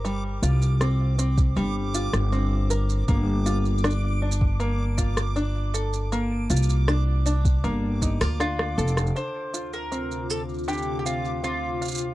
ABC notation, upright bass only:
X:1
M:4/4
L:1/16
Q:1/4=79
K:Bb
V:1 name="Upright bass" clef=bass
G,,,2 C,,6 G,,,3 G,,,4- G,,, | G,,,16- | G,,,2 C,,6 G,,,3 D,,3 F,,,2 | z16 |]